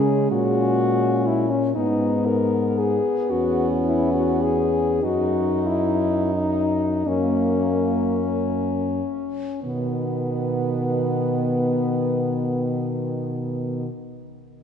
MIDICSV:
0, 0, Header, 1, 5, 480
1, 0, Start_track
1, 0, Key_signature, 5, "major"
1, 0, Tempo, 967742
1, 876, Time_signature, 6, 3, 24, 8
1, 876, Tempo, 1041667
1, 1836, Tempo, 1183432
1, 2316, Tempo, 1312910
1, 2796, Tempo, 1522843
1, 3276, Tempo, 1769912
1, 3756, Tempo, 1643836
1, 4236, Tempo, 1604278
1, 5238, End_track
2, 0, Start_track
2, 0, Title_t, "French horn"
2, 0, Program_c, 0, 60
2, 0, Note_on_c, 0, 68, 69
2, 153, Note_off_c, 0, 68, 0
2, 157, Note_on_c, 0, 66, 80
2, 628, Note_on_c, 0, 64, 65
2, 635, Note_off_c, 0, 66, 0
2, 743, Note_on_c, 0, 61, 65
2, 751, Note_off_c, 0, 64, 0
2, 864, Note_off_c, 0, 61, 0
2, 867, Note_on_c, 0, 63, 69
2, 1105, Note_on_c, 0, 70, 60
2, 1112, Note_off_c, 0, 63, 0
2, 1346, Note_on_c, 0, 68, 62
2, 1353, Note_off_c, 0, 70, 0
2, 1585, Note_on_c, 0, 66, 70
2, 1592, Note_off_c, 0, 68, 0
2, 1761, Note_off_c, 0, 66, 0
2, 1835, Note_on_c, 0, 64, 57
2, 1948, Note_off_c, 0, 64, 0
2, 1952, Note_on_c, 0, 66, 58
2, 2070, Note_on_c, 0, 68, 65
2, 2076, Note_off_c, 0, 66, 0
2, 2319, Note_on_c, 0, 66, 68
2, 2324, Note_off_c, 0, 68, 0
2, 2548, Note_on_c, 0, 64, 58
2, 2554, Note_off_c, 0, 66, 0
2, 2789, Note_off_c, 0, 64, 0
2, 2792, Note_on_c, 0, 63, 58
2, 3025, Note_on_c, 0, 61, 60
2, 3030, Note_off_c, 0, 63, 0
2, 3754, Note_off_c, 0, 61, 0
2, 3755, Note_on_c, 0, 59, 47
2, 5012, Note_off_c, 0, 59, 0
2, 5238, End_track
3, 0, Start_track
3, 0, Title_t, "French horn"
3, 0, Program_c, 1, 60
3, 0, Note_on_c, 1, 61, 52
3, 137, Note_off_c, 1, 61, 0
3, 155, Note_on_c, 1, 61, 55
3, 863, Note_off_c, 1, 61, 0
3, 877, Note_on_c, 1, 59, 46
3, 1436, Note_off_c, 1, 59, 0
3, 1582, Note_on_c, 1, 61, 50
3, 2299, Note_off_c, 1, 61, 0
3, 2314, Note_on_c, 1, 63, 45
3, 3026, Note_on_c, 1, 58, 40
3, 3031, Note_off_c, 1, 63, 0
3, 3603, Note_off_c, 1, 58, 0
3, 3756, Note_on_c, 1, 51, 36
3, 5012, Note_off_c, 1, 51, 0
3, 5238, End_track
4, 0, Start_track
4, 0, Title_t, "French horn"
4, 0, Program_c, 2, 60
4, 0, Note_on_c, 2, 56, 64
4, 717, Note_off_c, 2, 56, 0
4, 877, Note_on_c, 2, 59, 69
4, 2301, Note_off_c, 2, 59, 0
4, 2316, Note_on_c, 2, 63, 62
4, 3013, Note_off_c, 2, 63, 0
4, 3024, Note_on_c, 2, 58, 44
4, 3385, Note_off_c, 2, 58, 0
4, 3751, Note_on_c, 2, 59, 44
4, 5008, Note_off_c, 2, 59, 0
4, 5238, End_track
5, 0, Start_track
5, 0, Title_t, "French horn"
5, 0, Program_c, 3, 60
5, 0, Note_on_c, 3, 49, 66
5, 154, Note_off_c, 3, 49, 0
5, 157, Note_on_c, 3, 46, 59
5, 864, Note_off_c, 3, 46, 0
5, 877, Note_on_c, 3, 44, 60
5, 1436, Note_off_c, 3, 44, 0
5, 1588, Note_on_c, 3, 40, 52
5, 2301, Note_off_c, 3, 40, 0
5, 2319, Note_on_c, 3, 42, 52
5, 3014, Note_off_c, 3, 42, 0
5, 3023, Note_on_c, 3, 42, 47
5, 3590, Note_off_c, 3, 42, 0
5, 3757, Note_on_c, 3, 47, 46
5, 5013, Note_off_c, 3, 47, 0
5, 5238, End_track
0, 0, End_of_file